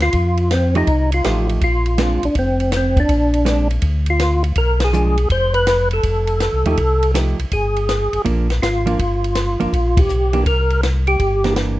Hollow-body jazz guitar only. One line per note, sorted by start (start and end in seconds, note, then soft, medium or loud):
0.76 0.86 F3 medium
0.76 0.87 A3 medium
0.76 0.87 D#4 medium
0.76 0.87 G4 medium
1.25 1.61 F3 medium
1.25 1.62 A3 medium
1.25 1.62 D#4 medium
1.25 1.62 G4 medium
1.98 2.20 G#3 medium
1.98 2.20 C4 medium
1.98 2.21 D4 medium
3.45 3.67 G#3 soft
3.45 3.68 C4 medium
3.45 3.68 D4 medium
4.93 5.15 F3 medium
4.93 5.16 G#3 medium
4.93 5.16 D4 medium
6.66 6.77 F3 medium
6.66 6.77 A3 medium
6.66 6.77 D#4 medium
6.66 6.77 G4 medium
7.14 7.37 F3 medium
7.14 7.36 A3 medium
7.14 7.37 D#4 medium
7.14 7.37 G4 medium
8.25 8.47 F3 medium
8.25 8.47 A#3 medium
8.25 8.47 D4 medium
8.86 8.97 F3 medium
8.86 8.98 A#3 medium
8.86 8.98 D4 medium
9.60 9.71 F3 medium
9.60 9.71 A#3 medium
9.60 9.72 D4 medium
10.33 10.45 E3 medium
10.33 10.45 A#3 medium
10.33 10.45 D4 medium
11.44 11.80 E3 medium
11.44 11.80 A#3 medium
11.44 11.80 D4 medium